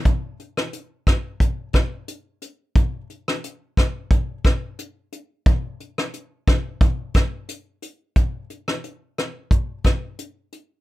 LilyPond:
\new DrumStaff \with { instrumentName = "Drums" } \drummode { \time 4/4 \tempo 4 = 89 <hh bd>8 hh16 ss16 hh8 <hh bd ss>8 <hh bd>8 <hh bd ss>8 hh8 hh8 | <hh bd>8 hh16 ss16 hh8 <hh bd ss>8 <hh bd>8 <hh bd ss>8 hh8 hh8 | <hh bd>8 hh16 ss16 hh8 <hh bd ss>8 <hh bd>8 <hh bd ss>8 hh8 hh8 | <hh bd>8 hh16 ss16 hh8 <hh ss>8 <hh bd>8 <hh bd ss>8 hh8 hh8 | }